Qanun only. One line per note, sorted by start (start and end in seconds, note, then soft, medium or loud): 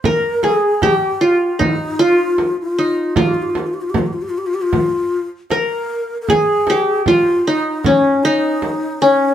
0.00 0.33 C5 medium
0.05 1.18 A#4 medium
0.44 0.89 G#4 medium
0.83 2.10 G4 medium
1.21 1.99 F4 medium
1.59 2.78 D#4 medium
1.99 3.16 F4 medium
2.79 4.23 D#4 medium
3.17 5.58 F4 medium
5.51 6.65 A#4 medium
6.30 6.76 G#4 medium
6.70 7.97 G4 medium
7.08 8.42 F4 medium
7.47 8.24 D#4 medium
7.86 9.01 C#4 medium
8.25 9.34 D#4 medium
9.02 9.34 C#4 medium